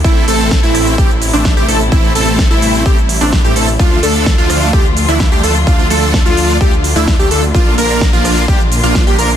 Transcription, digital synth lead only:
X:1
M:4/4
L:1/16
Q:1/4=128
K:Dm
V:1 name="Digital synth lead"
E2 A3 E3 G z2 D2 G A z | E2 A3 E3 G z2 D2 G A z | F2 A3 F3 G z2 E2 G A z | F2 A3 F3 G z2 E2 G A z |
F2 B3 F3 G z2 F2 G B z |]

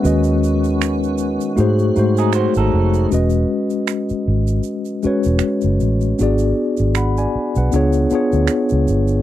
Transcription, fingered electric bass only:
X:1
M:4/4
L:1/16
Q:"Swing 16ths" 1/4=78
K:E
V:1 name="Fingered electric bass" clef=bass
D,,6- D,, z G,,2 G,,3 G,,, ^E,,,2 | E,,,2 z4 G,,,2 z3 E,,, z F,,, A,,,2 | G,,,2 z G,,,3 z B,,, C,,2 z =D,, z C,, =G,,,2 |]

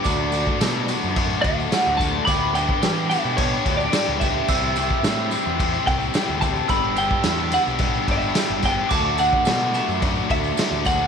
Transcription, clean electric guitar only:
X:1
M:4/4
L:1/16
Q:1/4=108
K:D
V:1 name="Clean electric guitar"
d8- d2 f4 a2 | b2 g4 e2 c3 d3 e2- | e8- e2 g4 a2 | b2 g4 f2 z2 e4 g2 |
a2 f4 e2 z2 e4 f2 |]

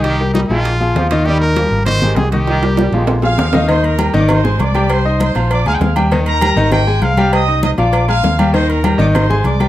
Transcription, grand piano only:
X:1
M:4/4
L:1/8
Q:1/4=198
K:Eb
V:1 name="Grand piano"
[E,Ee] [G,GB]2 [F,FA]2 [F,FA]2 [E,Ee] | [E,Ee]2 [G,GB]2 [E,Ee] [A,GA]2 [E,Ee]- | [E,Ee] [G,GB]2 [F,A,F]2 [F,FA]2 [E,Ee] | [E,Ee]2 [G,Gg] [E,Ee]2 [A,Aa]2 [G,Gg]- |
[G,Gg] [Eee']2 [F,Ff]2 [A,Aa]2 [G,Gg] | [E,Ee]2 [G,Gg] [E,Ee]2 [A,Aa]2 [G,Gg]- | [G,Gg] [Eee']2 [F,Ff]2 [A,Aa]2 [G,Gg] | [E,Ee]2 [G,Gg] [E,Ee]2 [A,Aa]2 [G,Gg] |]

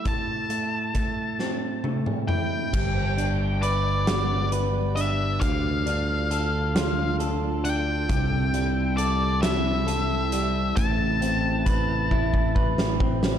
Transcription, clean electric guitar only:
X:1
M:6/8
L:1/8
Q:3/8=45
K:Am
V:1 name="Clean electric guitar"
A,, A, A, C A, E | G, D B B, B D | D, D A F A D | C, G, A E A G, |
A,, C B E B C |]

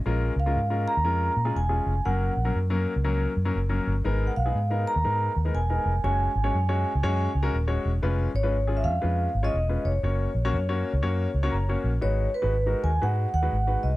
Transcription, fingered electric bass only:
X:1
M:4/4
L:1/16
Q:"Swing" 1/4=120
K:G#dor
V:1 name="Fingered electric bass" clef=bass
A,,,2 C,,2 G,,3 D,, E,,2 A,,2 =E,,,2 ^E,,,2 | F,,,2 A,,,2 F,,3 C,,3 F,,2 F,,,2 =G,,,2 | G,,,2 B,,,2 G,,3 D,, G,,2 D,,2 =E,,,2 ^E,,,2 | F,,,2 G,,,2 F,,3 C,, F,,2 C,,2 D,,,2 =E,,,2 |
E,,,2 G,,,4 E,,2 E,,2 G,,,2 =E,,,2 ^E,,,2 | F,,,2 A,,,2 F,,3 C,, F,,2 C,,2 F,,,2 A,,,2 | G,,,2 z G,,,3 D,,2 G,,2 D,,2 G,,,2 ^B,,,2 |]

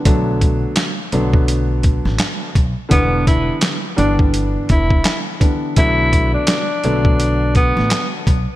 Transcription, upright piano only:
X:1
M:4/4
L:1/8
Q:"Swing 16ths" 1/4=84
K:Bm
V:1 name="Upright piano"
[D,F,A,B,D]2 z [D,F,A,B,D]4 z | [D,E,G,B,D]2 z [D,E,G,B,D]4 [D,E,G,B,D] | [D,F,A,B,D]2 z [D,F,A,B,D]4 z |]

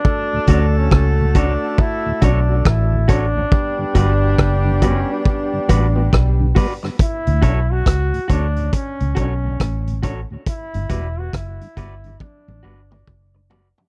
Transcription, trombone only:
X:1
M:4/4
L:1/16
Q:"Swing 16ths" 1/4=69
K:D
V:1 name="Trombone"
D3 C2 z D2 E2 D2 E2 D2- | D2 D4 C D6 z3 | E3 F3 D2 C2 C4 z2 | E3 F E4 D6 z2 |]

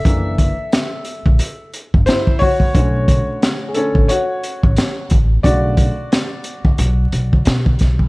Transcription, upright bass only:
X:1
M:4/4
L:1/16
Q:"Swing 16ths" 1/4=89
K:Bm
V:1 name="Upright bass" clef=bass
F,,,3 z4 ^A,,, z3 G,,, z4 | B,,,3 z4 A,,, z3 A,,, z2 A,,,2 | B,,,3 z4 D,, B,,,2 B,,,2 B,,2 B,,,2 |]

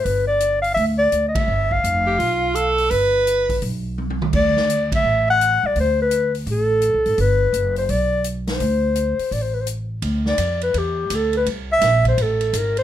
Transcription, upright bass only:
X:1
M:4/4
L:1/8
Q:"Swing" 1/4=168
K:Gmix
V:1 name="Upright bass" clef=bass
G,,,4 D,,2 D,,2 | G,,,2 F,,,2 B,,,4 | G,,,4 B,,,4 | D,,4 A,,,3 C,, |
D,,4 A,,,2- (3A,,, C,, _A,,, | G,,,2 ^F,,,2 B,,,4 | D,,3 z A,,,4 | D,,2 F,,2 E,,2 D,,2 |
C,,2 _B,,,2 A,,,2 _A,,,2 |]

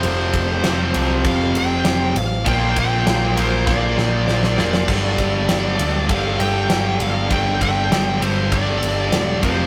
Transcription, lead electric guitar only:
X:1
M:4/4
L:1/8
Q:1/4=99
K:Gm
V:1 name="Lead electric guitar"
c4 f g2 f | g g2 c d3 d- | d4 f g2 f | g g2 c d3 c |]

